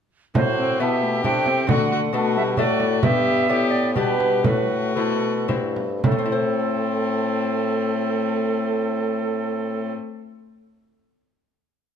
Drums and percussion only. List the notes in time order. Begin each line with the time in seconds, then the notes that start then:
0.35 frame drum
1.24 frame drum
1.46 frame drum
1.69 frame drum
2.57 frame drum
2.80 frame drum
3.03 frame drum
3.96 frame drum
4.20 frame drum
4.44 frame drum
5.49 frame drum
5.76 frame drum
6.04 frame drum